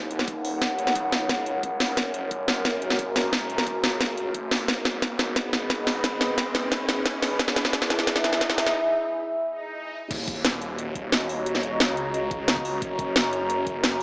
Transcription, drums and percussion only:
0.11 closed hi-hat
0.19 snare
0.28 kick, closed hi-hat
0.45 open hi-hat
0.62 kick, snare, closed hi-hat
0.79 closed hi-hat
0.87 snare
0.95 kick, closed hi-hat
1.12 snare, closed hi-hat
1.29 kick, snare, closed hi-hat
1.46 closed hi-hat
1.63 kick, closed hi-hat
1.80 snare, open hi-hat
1.97 kick, snare, closed hi-hat
2.14 closed hi-hat
2.31 kick, closed hi-hat
2.48 snare, closed hi-hat
2.65 kick, snare, closed hi-hat
2.82 closed hi-hat
2.90 snare
2.99 kick, closed hi-hat
3.16 snare, open hi-hat
3.33 kick, snare, closed hi-hat
3.50 closed hi-hat
3.58 snare
3.67 kick, closed hi-hat
3.84 snare, closed hi-hat
4.01 kick, snare, closed hi-hat
4.17 closed hi-hat
4.34 kick, closed hi-hat
4.51 snare, open hi-hat
4.68 kick, snare, closed hi-hat
4.85 snare, closed hi-hat
5.02 kick, snare, closed hi-hat
5.19 snare, closed hi-hat
5.36 kick, snare, closed hi-hat
5.53 snare, closed hi-hat
5.70 kick, snare, closed hi-hat
5.87 snare, open hi-hat
6.04 kick, snare, closed hi-hat
6.21 snare, closed hi-hat
6.38 kick, snare, closed hi-hat
6.55 snare, closed hi-hat
6.72 kick, snare, closed hi-hat
6.89 snare, closed hi-hat
7.06 kick, snare, closed hi-hat
7.22 snare, open hi-hat
7.39 kick, snare, closed hi-hat
7.48 snare
7.56 snare, closed hi-hat
7.65 snare
7.73 kick, snare, closed hi-hat
7.82 snare
7.90 snare, closed hi-hat
7.99 snare
8.07 kick, snare, closed hi-hat
8.16 snare
8.24 snare, closed hi-hat
8.33 snare
8.41 kick, snare, closed hi-hat
8.50 snare
8.58 snare, open hi-hat
8.67 snare
10.11 kick, closed hi-hat, crash
10.28 kick, closed hi-hat
10.45 snare, closed hi-hat
10.62 closed hi-hat
10.78 closed hi-hat
10.95 kick, closed hi-hat
11.12 snare, closed hi-hat
11.29 open hi-hat
11.46 closed hi-hat
11.55 snare
11.63 closed hi-hat
11.80 snare, closed hi-hat
11.97 closed hi-hat
12.14 closed hi-hat
12.31 kick, closed hi-hat
12.48 snare, closed hi-hat
12.56 kick
12.65 open hi-hat
12.82 kick, closed hi-hat
12.99 kick, closed hi-hat
13.16 snare, closed hi-hat
13.33 closed hi-hat
13.50 closed hi-hat
13.67 kick, closed hi-hat
13.84 snare, closed hi-hat

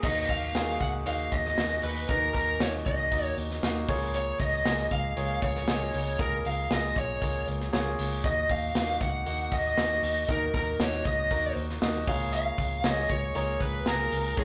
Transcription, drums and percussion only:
0.03 kick, crash, tambourine
0.29 kick, hi-hat pedal, open hi-hat, tambourine
0.55 snare, hi-hat pedal, open hi-hat, tambourine
0.80 kick, hi-hat pedal, open hi-hat, tambourine
1.06 hi-hat pedal, open hi-hat, tambourine
1.32 kick, hi-hat pedal, open hi-hat, tambourine
1.45 snare
1.58 snare, hi-hat pedal, open hi-hat, tambourine
1.83 hi-hat pedal, open hi-hat, tambourine
1.96 tambourine
2.09 kick, hi-hat pedal, open hi-hat, tambourine
2.22 tambourine
2.34 kick, hi-hat pedal, open hi-hat, tambourine
2.47 tambourine
2.60 snare, hi-hat pedal, open hi-hat, tambourine
2.86 kick, hi-hat pedal, open hi-hat, tambourine
3.11 kick, hi-hat pedal, open hi-hat, tambourine
3.38 hi-hat pedal, open hi-hat, tambourine
3.50 snare
3.63 snare, hi-hat pedal, open hi-hat, tambourine
3.88 kick, hi-hat pedal, open hi-hat, tambourine
4.02 tambourine
4.14 hi-hat pedal, open hi-hat, tambourine
4.40 kick, hi-hat pedal, open hi-hat, tambourine
4.65 snare, hi-hat pedal, open hi-hat, tambourine
4.91 kick, hi-hat pedal, open hi-hat, tambourine
5.17 hi-hat pedal, open hi-hat, tambourine
5.42 kick, hi-hat pedal, open hi-hat, tambourine
5.55 snare
5.68 snare, hi-hat pedal, open hi-hat, tambourine
5.93 hi-hat pedal, open hi-hat, tambourine
6.06 tambourine
6.19 kick, hi-hat pedal, open hi-hat, tambourine
6.45 hi-hat pedal, open hi-hat, tambourine
6.71 snare, hi-hat pedal, open hi-hat, tambourine
6.96 kick, hi-hat pedal, open hi-hat, tambourine
7.09 tambourine
7.21 kick, hi-hat pedal, open hi-hat, tambourine
7.47 hi-hat pedal, open hi-hat, tambourine
7.60 snare
7.73 snare, hi-hat pedal, open hi-hat, tambourine
7.99 hi-hat pedal, open hi-hat, tambourine
8.12 tambourine
8.24 kick, hi-hat pedal, open hi-hat, tambourine
8.49 kick, hi-hat pedal, open hi-hat, tambourine
8.62 tambourine
8.75 snare, hi-hat pedal, open hi-hat, tambourine
9.01 kick, hi-hat pedal, open hi-hat, tambourine
9.14 tambourine
9.26 hi-hat pedal, open hi-hat, tambourine
9.52 kick, hi-hat pedal, open hi-hat, tambourine
9.77 snare, hi-hat pedal, open hi-hat, tambourine
10.03 hi-hat pedal, open hi-hat, tambourine
10.28 kick, hi-hat pedal, open hi-hat, tambourine
10.54 kick, hi-hat pedal, open hi-hat, tambourine
10.67 tambourine
10.80 snare, hi-hat pedal, open hi-hat, tambourine
11.05 kick, hi-hat pedal, open hi-hat, tambourine
11.19 tambourine
11.30 kick, hi-hat pedal, open hi-hat, tambourine
11.56 hi-hat pedal, open hi-hat, tambourine
11.70 snare
11.82 snare, hi-hat pedal, open hi-hat, tambourine
12.07 kick, hi-hat pedal, open hi-hat, tambourine
12.21 tambourine
12.33 hi-hat pedal, open hi-hat, tambourine
12.58 kick, hi-hat pedal, open hi-hat, tambourine
12.84 snare, hi-hat pedal, open hi-hat, tambourine
13.09 kick, hi-hat pedal, open hi-hat, tambourine
13.35 hi-hat pedal, open hi-hat, tambourine
13.61 kick, hi-hat pedal, open hi-hat, tambourine
13.86 snare, hi-hat pedal, open hi-hat, tambourine
14.12 hi-hat pedal, open hi-hat, tambourine
14.37 kick, hi-hat pedal, open hi-hat, tambourine

